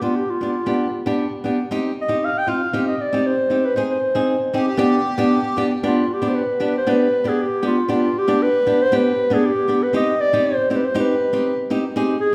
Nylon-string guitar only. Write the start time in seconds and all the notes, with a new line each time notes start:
0.02 B3 D4 G4
0.41 B3 D4 G4
0.66 B3 D4 G4
1.06 B3 D4 G4
1.44 B3 D4 G4
1.71 C4 D#4 G4
2.08 C4 D#4 G4
2.47 C4 D#4 F4
2.73 C4 D#4 G4
3.13 C4 D#4 G4
3.50 C4 D#4 G4
3.76 C4 D#4 G#4
4.15 C4 D#4 G#4
4.53 C4 D#4 G#4
4.77 B3 D4 G4
5.18 B3 D4 G4
5.57 B3 D4 G4
5.83 B3 D4 G4
6.22 B3 D4 G4
6.60 B3 D4 G4
6.87 B3 D4 G4
7.24 B3 D4 G4
7.62 B3 D4 G4
7.88 B3 D4 G4
8.27 B3 D4 G4
8.66 B3 D4 G4
8.92 B3 D4 G4
9.30 B3 D4 G4
9.68 B3 D4 G4
9.93 C4 D#4 G4
10.33 C4 D#4 G4
10.70 C4 D#4 G4
10.95 C4 D#4 G4
11.33 C4 D#4 G4
11.70 C4 D#4 G4
11.96 C4 D#4 G#4